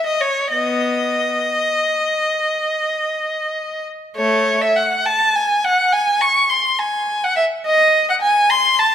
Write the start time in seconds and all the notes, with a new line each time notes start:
0.07 D#5
0.21 C#5
0.52 B3 D#5
4.17 A3 C#5
4.62 E5
4.76 F#5
5.06 A5
5.36 G#5
5.65 F#5
5.93 G#5
6.21 C#6
6.50 C6
6.79 G#5
7.24 F#5
7.36 E5
7.66 D#5
8.10 F#5
8.22 G#5
8.50 C6
8.79 A5